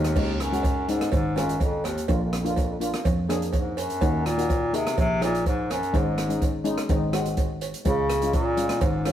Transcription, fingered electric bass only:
0.00 0.14 D#2 medium
1.13 1.96 G#1 medium
2.09 2.92 A#1 medium
3.06 3.89 F2 medium
4.02 4.85 D#2 medium
4.98 5.81 A#1 medium
5.94 6.77 G#1 medium
6.90 7.73 G#1 medium
7.86 8.69 C#2 medium
8.82 9.12 G#1 medium

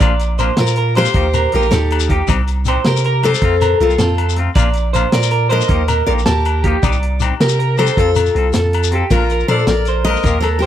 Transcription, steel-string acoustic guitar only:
0.58 0.93 F4 medium
0.58 0.95 A#4 medium
0.97 1.50 G4 medium
0.97 1.55 C5 loud
1.55 1.69 G4 medium
1.55 1.73 A#4 medium
1.71 2.11 D#4 medium
1.71 2.11 G4 medium
2.87 3.21 G4 medium
2.87 3.25 A#4 medium
3.24 3.77 A4 medium
3.24 3.77 C5 loud
3.81 3.99 F4 medium
3.81 3.99 A4 medium
4.00 4.39 C4 medium
4.00 4.40 F4 medium
5.13 5.48 A#4 medium
5.13 5.52 D5 loud
5.52 6.05 A#4 medium
5.52 6.06 D#5 loud
6.06 6.12 A#4 medium
6.06 6.12 D5 medium
6.26 6.66 G4 medium
6.26 6.66 A#4 medium
7.41 7.76 G4 medium
7.41 7.76 A#4 medium
7.79 7.96 A4 medium
7.79 7.99 C5 medium
7.99 8.89 F4 medium
7.99 8.93 A4 medium
9.11 9.46 F4 medium
9.11 9.46 A#4 medium
9.48 9.66 A4 medium
9.48 9.66 C5 loud
9.68 10.03 A#4 medium
9.68 10.04 D5 medium
10.05 10.42 A#4 medium
10.05 10.40 D#5 loud
10.41 10.48 A4 medium
10.41 10.46 C5 medium
10.59 10.66 G4 medium
10.59 10.66 A#4 medium

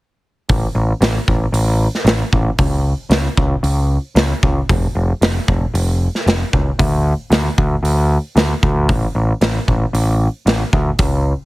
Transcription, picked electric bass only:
0.49 0.66 A1 medium
0.75 0.92 A1 medium
1.01 1.18 A1 medium
1.28 1.45 A1 medium
1.52 1.87 A1 medium
2.04 2.22 A1 medium
2.32 2.49 A1 medium
2.59 2.92 C#2 medium
3.09 3.27 C#2 medium
3.37 3.54 C#2 medium
3.63 3.97 C#2 medium
4.15 4.32 C#2 medium
4.43 4.60 C#2 medium
4.69 4.86 F1 medium
4.95 5.12 F1 medium
5.21 5.38 F1 medium
5.48 5.65 F1 medium
5.74 6.07 F1 medium
6.26 6.43 F1 medium
6.53 6.70 C#2 medium
6.79 7.12 D2 medium
7.30 7.47 D2 medium
7.58 7.75 D2 medium
7.83 8.17 D2 medium
8.36 8.52 D2 medium
8.63 8.90 D2 medium
8.89 9.06 A1 medium
9.15 9.32 A1 medium
9.41 9.58 A1 medium
9.68 9.84 A1 medium
9.93 10.27 A1 medium
10.46 10.63 A1 medium
10.73 10.89 D2 medium
10.99 11.32 C#2 medium

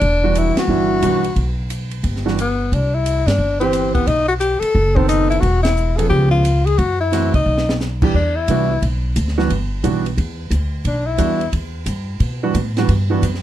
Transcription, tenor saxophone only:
0.00 0.39 D4 medium
0.38 0.58 E4 medium
0.59 1.55 F#4 medium
2.40 2.75 B3 medium
2.74 2.96 D4 medium
2.94 3.28 E4 medium
3.27 3.60 D4 loud
3.60 3.93 C4 medium
3.94 4.09 B3 medium
4.07 4.27 D#4 loud
4.28 4.34 F#4 medium
4.40 4.61 G4 loud
4.60 4.97 A4 loud
4.96 5.08 C4 medium
5.08 5.29 D#4 medium
5.30 5.42 E4 medium
5.40 5.62 F#4 medium
5.63 5.98 E4 medium
5.97 6.09 A4 medium
6.09 6.30 G4 medium
6.31 6.67 F4 medium
6.66 6.80 G#4 medium
6.78 7.00 F#4 medium
7.00 7.32 E4 medium
7.34 7.77 D#4 medium
8.16 8.37 D4 medium
8.36 8.82 E4 loud
10.87 11.07 D4 medium
11.06 11.52 E4 medium

